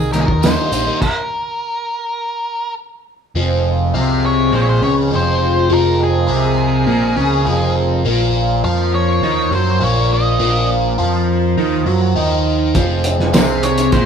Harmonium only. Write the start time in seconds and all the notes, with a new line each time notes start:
Already playing: D#3 A#3 D#4 A#4
3.37 F3 G#3 C4 G#4
5.69 A#4
8.05 F3 A#3 F4
12.77 G#3 C4 G#4